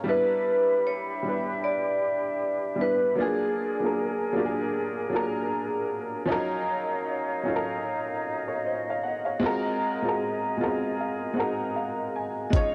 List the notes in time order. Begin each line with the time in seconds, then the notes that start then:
Already playing: A#4 C#5
0.04 G3 B3 D4 G4 E5 B5
0.08 E4 B4
0.87 C#5
1.23 G3 B3 D4
1.27 E4 B4
1.64 D5
2.76 G3 B3 D4
2.80 E4 B4
3.15 F#3 A#3 D4 G#4 A#4
3.20 F4 G#4
3.80 F#3 A#3 D4
3.84 F4 A#4
4.33 F#3 A#3 D4
4.37 F4 G4
4.45 G#4
5.09 F#3 A#3 D4
5.14 F4 A#4
6.25 F3 C#4 D#4 C#5 D#5 F5
6.30 F#3 F4 A#4
7.43 F#3 C#4 D#4
7.48 F4 A4
7.56 A#4
8.48 A#4 C#5
8.65 C5 D#5
8.90 C#5 F5
9.03 D#5 F#5
9.25 C#5 F5
9.40 G#3 C4 F4 G#4
9.44 F#4 A#4
10.02 G#3 C4 F4 F#4
10.08 A#4
10.57 G#3 B3 F4 D#5
10.62 C4 F#4 A#4
11.00 F5
11.34 G#3 C4 D#4 F#5
11.38 F#4 A#4
11.76 F5
12.16 G#5
12.50 G#3 C#4 D#4 D#5, kick, closed hi-hat
12.54 F4 C#5 D#5 F5